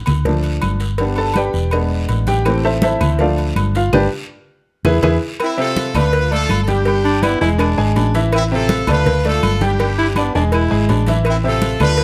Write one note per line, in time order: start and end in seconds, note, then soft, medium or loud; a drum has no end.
0.06 0.58 D2 medium
0.06 cowbell medium
0.06 high conga soft
0.06 low conga medium
0.06 low agogo loud
0.06 short guiro medium
0.06 claves medium
0.25 0.78 F3 medium
0.25 0.78 A3 medium
0.25 0.78 D4 medium
0.25 cowbell loud
0.25 high conga soft
0.25 low conga medium
0.25 long guiro medium
0.43 high conga soft
0.43 low agogo medium
0.61 1.48 G1 medium
0.61 cowbell medium
0.61 high conga medium
0.61 low agogo loud
0.61 short guiro medium
0.61 claves medium
0.80 cowbell medium
0.80 short guiro medium
0.98 1.51 G3 medium
0.98 1.52 B3 medium
0.98 1.52 D4 medium
0.98 cowbell loud
0.98 high conga soft
0.98 low agogo medium
0.98 long guiro medium
1.16 1.35 A4 medium
1.16 1.35 A5 loud
1.16 high conga soft
1.16 low agogo medium
1.34 1.70 G4 medium
1.34 1.70 B4 medium
1.34 1.70 D5 medium
1.34 1.70 G5 medium
1.34 cowbell medium
1.34 high conga medium
1.34 low agogo loud
1.34 short guiro medium
1.34 claves medium
1.53 2.05 E1 medium
1.53 high conga soft
1.53 short guiro medium
1.71 2.42 G#3 medium
1.71 2.42 B3 medium
1.71 2.42 D4 medium
1.71 cowbell loud
1.71 high conga soft
1.71 low agogo loud
1.71 long guiro medium
1.71 claves medium
1.91 high conga soft
2.09 2.95 A1 medium
2.09 cowbell medium
2.09 high conga soft
2.09 low agogo medium
2.09 short guiro medium
2.27 2.62 G4 medium
2.27 2.62 G5 loud
2.27 cowbell medium
2.27 high conga medium
2.27 low agogo medium
2.27 short guiro medium
2.45 3.15 E3 medium
2.45 3.16 A3 medium
2.45 3.16 C4 medium
2.45 cowbell loud
2.45 high conga soft
2.45 low agogo loud
2.45 long guiro medium
2.45 claves medium
2.64 2.82 A4 medium
2.64 2.82 C5 medium
2.64 2.82 E5 medium
2.64 2.82 A5 loud
2.64 high conga soft
2.82 3.17 E4 medium
2.82 3.17 A4 medium
2.82 3.17 C5 medium
2.82 3.17 E5 medium
2.82 cowbell medium
2.82 high conga loud
2.82 low agogo medium
2.82 short guiro medium
3.01 3.52 D2 medium
3.01 cowbell medium
3.01 high conga soft
3.01 low conga medium
3.01 low agogo loud
3.01 short guiro medium
3.01 claves medium
3.19 3.72 F3 medium
3.19 3.72 A3 medium
3.19 3.73 D4 medium
3.19 3.38 F4 medium
3.19 3.38 A4 medium
3.19 3.38 D5 medium
3.19 3.38 F5 medium
3.19 cowbell loud
3.19 high conga soft
3.19 long guiro medium
3.38 high conga soft
3.38 low agogo medium
3.55 3.90 G1 medium
3.55 cowbell medium
3.55 high conga medium
3.55 low agogo loud
3.55 short guiro medium
3.55 claves medium
3.75 3.92 F4 medium
3.75 3.92 F5 medium
3.75 cowbell medium
3.75 short guiro medium
3.93 4.06 G1 loud
3.93 4.05 D4 loud
3.93 4.05 G4 loud
3.93 4.05 B4 loud
3.93 cowbell loud
3.93 low conga loud
3.93 high timbale loud
3.93 long guiro loud
3.93 claves loud
4.85 4.98 E2 loud
4.85 4.97 E4 loud
4.85 4.96 G#4 loud
4.85 4.96 B4 loud
4.85 cowbell loud
4.85 low conga loud
4.85 high timbale loud
4.85 long guiro loud
4.85 claves loud
5.02 5.17 E2 loud
5.02 5.14 E4 loud
5.02 5.14 G#4 loud
5.02 5.14 B4 loud
5.02 cowbell loud
5.02 low conga loud
5.02 high timbale loud
5.02 long guiro loud
5.02 claves loud
5.40 5.57 C4 medium
5.40 5.58 E4 loud
5.40 cowbell loud
5.40 high conga soft
5.40 low agogo loud
5.40 long guiro medium
5.40 claves medium
5.57 5.88 C3 medium
5.57 5.88 C4 medium
5.57 5.92 F4 medium
5.57 5.93 A4 loud
5.57 5.88 E5 medium
5.57 high conga soft
5.76 cowbell medium
5.76 high conga loud
5.76 low agogo medium
5.76 short guiro medium
5.95 6.46 D2 medium
5.95 6.25 A3 medium
5.95 6.31 F4 medium
5.95 6.25 A4 medium
5.95 6.32 B4 loud
5.95 6.25 D5 medium
5.95 cowbell medium
5.95 high conga soft
5.95 low conga medium
5.95 low agogo loud
5.95 short guiro medium
5.95 claves medium
6.12 cowbell loud
6.12 high conga soft
6.12 long guiro medium
6.31 6.61 A3 medium
6.31 6.59 F4 medium
6.31 6.61 A4 medium
6.31 6.60 A4 loud
6.31 6.62 D5 medium
6.31 high conga soft
6.31 low agogo medium
6.49 7.36 G1 medium
6.49 cowbell medium
6.49 high conga medium
6.49 low agogo loud
6.49 short guiro medium
6.49 claves medium
6.62 6.69 A4 medium
6.68 6.83 G3 loud
6.68 7.43 D4 medium
6.68 6.83 G4 medium
6.68 7.42 G4 loud
6.68 6.83 G5 medium
6.68 cowbell medium
6.68 high conga medium
6.68 short guiro medium
6.85 7.16 G3 medium
6.85 7.17 G4 medium
6.85 7.17 G5 medium
6.85 cowbell loud
6.85 high conga soft
6.85 low agogo loud
6.85 long guiro medium
7.05 7.24 D4 loud
7.05 high conga soft
7.05 low agogo medium
7.23 7.38 B3 medium
7.23 7.40 E4 loud
7.23 7.38 B4 medium
7.23 7.38 D5 medium
7.23 cowbell medium
7.23 high conga medium
7.23 low agogo loud
7.23 short guiro medium
7.23 claves medium
7.41 7.76 E1 loud
7.41 7.72 G#3 loud
7.41 7.49 E4 loud
7.41 7.72 G#4 loud
7.41 7.72 G#5 medium
7.41 high conga soft
7.41 short guiro medium
7.58 7.93 D4 loud
7.58 cowbell loud
7.58 high conga soft
7.58 low agogo loud
7.58 long guiro medium
7.58 claves medium
7.78 7.95 G#1 medium
7.78 8.08 G#3 loud
7.78 8.08 G#4 loud
7.78 8.08 G#5 loud
7.78 high conga soft
7.95 8.82 A1 loud
7.95 8.21 D4 medium
7.95 cowbell medium
7.95 high conga soft
7.95 low timbale medium
7.95 low agogo loud
7.95 short guiro medium
8.14 8.45 E3 loud
8.14 8.45 E4 medium
8.14 8.45 E5 medium
8.14 cowbell medium
8.14 low agogo medium
8.14 short guiro medium
8.32 8.43 C4 medium
8.32 8.43 E4 loud
8.32 cowbell loud
8.32 high conga soft
8.32 low agogo loud
8.32 long guiro medium
8.32 claves medium
8.52 8.82 C3 medium
8.52 8.82 C4 loud
8.52 8.87 F4 medium
8.52 8.87 A4 loud
8.52 8.82 E5 medium
8.52 high conga soft
8.69 cowbell medium
8.69 high conga loud
8.69 low agogo medium
8.69 short guiro medium
8.87 9.39 D2 loud
8.87 9.19 A3 medium
8.87 9.23 F4 medium
8.87 9.19 A4 medium
8.87 9.19 D5 medium
8.87 cowbell medium
8.87 high conga soft
8.87 low conga medium
8.87 low agogo loud
8.87 short guiro medium
8.87 claves medium
8.92 9.24 B4 loud
9.06 cowbell loud
9.06 high conga soft
9.06 low conga medium
9.06 long guiro medium
9.25 9.55 A3 medium
9.25 9.62 F4 medium
9.25 9.55 A4 medium
9.25 9.63 A4 loud
9.25 9.55 D5 medium
9.25 high conga soft
9.25 low agogo medium
9.43 10.29 G1 medium
9.43 cowbell medium
9.43 high conga medium
9.43 low agogo loud
9.43 short guiro medium
9.43 claves medium
9.61 9.77 G3 loud
9.61 10.32 D4 medium
9.61 9.77 G4 loud
9.61 9.77 G5 medium
9.61 cowbell medium
9.61 high conga medium
9.61 short guiro medium
9.66 10.33 G4 loud
9.79 10.10 G3 medium
9.79 10.10 G4 medium
9.79 10.10 G5 medium
9.79 cowbell loud
9.79 high conga soft
9.79 low agogo loud
9.79 long guiro medium
9.98 10.07 E4 loud
9.98 high conga soft
9.98 low agogo medium
10.16 10.32 B3 medium
10.16 10.34 D4 medium
10.16 10.32 B4 medium
10.16 10.32 D5 medium
10.16 cowbell medium
10.16 high conga medium
10.16 low agogo loud
10.16 short guiro medium
10.16 claves medium
10.35 10.69 E1 loud
10.35 10.65 G#3 loud
10.35 10.44 D4 loud
10.35 10.65 G#4 medium
10.35 10.65 G#5 loud
10.35 high conga soft
10.35 short guiro medium
10.52 10.87 E4 loud
10.52 cowbell loud
10.52 high conga soft
10.52 low agogo loud
10.52 long guiro medium
10.52 claves medium
10.71 10.88 G#1 medium
10.71 11.01 G#3 loud
10.71 11.01 G#4 loud
10.71 11.01 G#5 loud
10.71 high conga soft
10.89 11.75 A1 loud
10.89 11.15 D4 medium
10.89 cowbell medium
10.89 high conga soft
10.89 low timbale medium
10.89 low agogo loud
10.89 short guiro medium
11.06 11.38 E3 medium
11.06 11.38 E4 medium
11.06 11.38 E5 medium
11.06 cowbell medium
11.06 high conga medium
11.06 low agogo medium
11.06 short guiro medium
11.25 11.36 C4 medium
11.25 cowbell loud
11.25 high conga soft
11.25 low agogo loud
11.25 long guiro medium
11.25 claves medium
11.29 11.36 E4 loud
11.43 11.74 C3 medium
11.43 11.74 C4 medium
11.43 11.79 F4 medium
11.43 11.80 A4 loud
11.43 11.74 E5 medium
11.43 high conga soft
11.62 cowbell medium
11.62 high conga loud
11.62 low agogo medium
11.62 short guiro medium
11.80 12.04 D2 medium
11.80 12.04 A3 medium
11.80 12.04 F4 medium
11.80 12.04 A4 medium
11.80 12.04 B4 loud
11.80 12.04 D5 medium
11.80 cowbell medium
11.80 high conga soft
11.80 low conga medium
11.80 low agogo loud
11.80 short guiro medium
11.80 claves medium
11.97 cowbell loud
11.97 high conga soft
11.97 long guiro medium